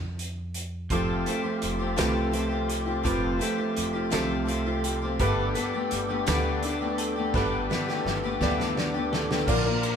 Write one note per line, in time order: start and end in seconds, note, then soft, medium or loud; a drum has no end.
0.00 0.87 F2 medium
0.19 closed hi-hat medium
0.54 closed hi-hat medium
0.90 1.24 F1 loud
0.90 1.27 F3 medium
0.90 1.26 A3 medium
0.90 5.16 C4 medium
0.90 1.27 C4 medium
0.90 1.88 F4 medium
0.90 5.16 F4 medium
0.90 1.28 F4 medium
0.90 5.16 G4 medium
0.90 1.89 G4 medium
0.90 1.28 G4 medium
0.90 1.89 A4 medium
0.90 5.17 A4 medium
0.90 kick loud
0.90 closed hi-hat medium
1.26 1.45 A3 medium
1.26 1.44 C4 medium
1.26 1.43 F4 medium
1.26 1.42 G4 medium
1.26 closed hi-hat medium
1.43 1.80 C4 soft
1.43 1.79 F4 soft
1.43 1.77 G4 medium
1.62 1.96 F1 medium
1.62 3.03 F3 medium
1.62 closed hi-hat medium
1.79 1.96 C4 soft
1.79 1.96 F4 medium
1.79 1.96 G4 medium
1.96 3.02 C2 medium
1.96 2.33 F3 medium
1.96 2.30 A3 medium
1.96 2.31 C4 medium
1.96 2.32 F4 medium
1.96 2.96 F4 medium
1.96 2.33 G4 loud
1.96 2.96 G4 medium
1.96 2.96 B4 medium
1.96 snare loud
1.96 closed hi-hat medium
2.32 2.51 A3 medium
2.32 2.51 C4 medium
2.32 2.50 F4 medium
2.32 2.48 G4 medium
2.32 closed hi-hat medium
2.49 2.86 C4 soft
2.49 2.85 F4 medium
2.49 2.84 G4 medium
2.69 4.84 G4 medium
2.69 closed hi-hat medium
2.86 3.03 C4 soft
2.86 3.03 F4 soft
2.86 3.04 G4 medium
3.03 3.39 F1 loud
3.03 3.40 F3 medium
3.03 3.38 A3 medium
3.03 3.39 C4 medium
3.03 3.40 F4 medium
3.03 4.03 F4 medium
3.03 3.41 G4 medium
3.03 4.03 G4 medium
3.03 4.04 B4 medium
3.03 kick loud
3.03 closed hi-hat medium
3.39 3.58 A3 medium
3.39 3.59 C4 medium
3.39 3.59 F4 medium
3.39 3.57 G4 medium
3.39 closed hi-hat medium
3.58 3.94 C4 soft
3.58 3.94 F4 soft
3.58 3.92 G4 medium
3.76 4.11 F1 medium
3.76 5.20 F3 medium
3.76 closed hi-hat medium
3.93 4.10 C4 soft
3.93 4.11 F4 medium
3.93 4.11 G4 medium
4.10 5.16 C2 medium
4.10 4.47 F3 medium
4.10 4.44 A3 medium
4.10 4.45 C4 medium
4.10 4.46 F4 medium
4.10 5.10 F4 medium
4.10 4.47 G4 medium
4.10 5.10 G4 medium
4.10 5.11 A4 medium
4.10 snare loud
4.10 closed hi-hat medium
4.45 4.65 A3 medium
4.45 4.65 C4 medium
4.45 4.65 F4 medium
4.45 4.64 G4 medium
4.45 closed hi-hat medium
4.66 5.03 C4 soft
4.66 5.02 F4 medium
4.66 5.00 G4 medium
4.84 6.97 G4 medium
4.84 closed hi-hat medium
5.02 5.20 C4 soft
5.02 5.21 F4 soft
5.02 5.19 G4 medium
5.19 5.53 G1 loud
5.19 5.56 G2 medium
5.19 5.56 D3 medium
5.19 5.90 G3 medium
5.19 5.53 A3 medium
5.19 9.44 B3 medium
5.19 5.54 B3 medium
5.19 9.45 D4 medium
5.19 5.55 D4 medium
5.19 9.45 G4 medium
5.19 6.18 G4 medium
5.19 5.56 G4 medium
5.19 9.45 A4 medium
5.19 6.18 A4 medium
5.19 6.18 B4 loud
5.19 kick loud
5.19 closed hi-hat medium
5.54 5.73 A3 medium
5.54 5.74 B3 medium
5.54 5.73 D4 medium
5.54 5.72 G4 medium
5.54 closed hi-hat medium
5.73 6.10 A3 soft
5.73 6.09 B3 soft
5.73 6.08 D4 soft
5.73 6.07 G4 soft
5.91 6.25 G1 medium
5.91 7.33 G3 medium
5.91 closed hi-hat medium
6.08 6.26 A3 medium
6.08 6.27 B3 medium
6.08 6.27 D4 soft
6.08 6.27 G4 medium
6.27 7.31 D2 medium
6.27 6.63 G2 medium
6.27 6.63 D3 medium
6.27 6.62 A3 medium
6.27 6.62 B3 medium
6.27 6.64 D4 medium
6.27 7.25 G4 medium
6.27 6.64 G4 medium
6.27 7.25 A4 medium
6.27 7.25 B4 medium
6.27 snare loud
6.27 closed hi-hat medium
6.63 6.81 A3 medium
6.63 6.81 B3 medium
6.63 6.81 D4 medium
6.63 6.79 G4 medium
6.63 closed hi-hat medium
6.81 7.18 A3 soft
6.81 7.16 B3 soft
6.81 7.17 D4 medium
6.81 7.15 G4 medium
6.98 8.77 A4 medium
6.98 closed hi-hat medium
7.16 7.33 A3 soft
7.16 7.34 B3 soft
7.16 7.34 D4 medium
7.16 7.34 G4 medium
7.34 7.67 G1 loud
7.34 7.70 G2 medium
7.34 7.70 D3 medium
7.34 8.04 G3 medium
7.34 7.69 A3 medium
7.34 7.69 B3 medium
7.34 7.70 D4 medium
7.34 8.32 G4 medium
7.34 7.71 G4 medium
7.34 8.32 A4 medium
7.34 8.32 B4 loud
7.34 kick loud
7.34 snare medium
7.70 7.88 A3 medium
7.70 7.88 B3 medium
7.70 7.87 D4 medium
7.70 7.86 G4 medium
7.70 snare medium
7.88 8.24 A3 soft
7.88 8.24 B3 soft
7.88 8.23 D4 soft
7.88 8.22 G4 medium
7.88 snare soft
8.05 8.39 G1 medium
8.05 9.49 G3 medium
8.05 snare medium
8.24 8.41 A3 soft
8.24 8.41 B3 medium
8.24 8.41 D4 medium
8.24 8.41 G4 medium
8.41 9.45 D2 medium
8.41 8.77 G2 medium
8.41 8.77 D3 medium
8.41 8.76 A3 medium
8.41 8.77 B3 medium
8.41 8.78 D4 medium
8.41 9.39 G4 medium
8.41 8.78 G4 medium
8.41 9.39 A4 medium
8.41 9.40 D5 medium
8.41 kick medium
8.41 snare medium
8.60 snare medium
8.77 8.95 A3 medium
8.77 8.95 B3 medium
8.77 8.94 D4 medium
8.77 8.93 G4 medium
8.77 snare medium
8.94 9.32 A3 soft
8.94 9.31 B3 medium
8.94 9.31 D4 medium
8.94 9.30 G4 medium
9.12 9.49 A4 medium
9.12 snare medium
9.31 9.49 A3 soft
9.31 9.49 B3 medium
9.31 9.48 D4 medium
9.31 9.49 G4 medium
9.31 snare medium
9.46 9.96 A#1 loud
9.46 9.66 A#2 medium
9.46 9.66 D3 medium
9.46 9.67 F3 medium
9.46 9.96 A#3 medium
9.46 9.66 A#3 medium
9.46 9.96 D4 medium
9.46 9.65 D4 loud
9.46 9.96 F4 medium
9.46 9.96 A#4 medium
9.46 9.64 A#4 medium
9.46 9.96 D5 loud
9.46 kick loud
9.46 crash loud
9.46 tambourine loud
9.66 9.96 F3 medium
9.66 9.96 A#3 medium
9.66 9.96 D4 medium
9.66 9.96 A#4 medium
9.83 ride medium